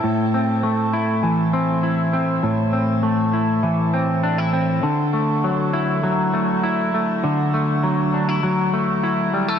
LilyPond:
\new Staff \with { instrumentName = "Clean electric guitar" } { \time 4/4 \key a \dorian \tempo 4 = 100 a,8 c'8 a8 e'8 e8 c'8 e'8 c'8 | a,8 c'8 a8 e'8 e8 c'8 d'16 e'16 c'8 | d8 a8 fis8 e'8 fis8 a8 e'8 a8 | d8 a8 fis8 d'16 e'16 fis8 a8 e'8 g16 a16 | }